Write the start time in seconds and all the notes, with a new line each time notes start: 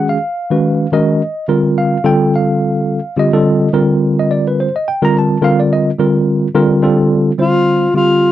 Already playing: D#3 G#3 C#4 F#4 G#4
0.09 F5
0.50 D#3 G#3 C#4 F#4 B4
0.92 D#3 G#3 C#4 F#4 A#4 D#5
1.48 D3 G3 C4 F4 A#4
1.78 F5
2.04 D3 G3 C4 F4 A4 G5
2.36 F5
3.16 D3 G3 C4 F4 G4 D#5
3.33 D3 G3 C4 F4 A4
3.73 D3 G3 C4 F4 A#4
4.19 D#5
4.31 D5
4.48 B4
4.60 C5
4.76 D#5
4.88 G5
5.02 D3 G3 C4 F4 A#4 A#5
5.19 A5
5.42 D3 G3 C4 F4 A#4 F5
5.60 D5
5.73 D#5
5.99 D3 G3 C4 F4 A#4
6.55 D3 G3 C4 F4 A#4
6.82 D3 G3 C4 F4 A4
7.38 D3 G3 C4 F4 C5
7.94 D3 G3 C4 F4 G4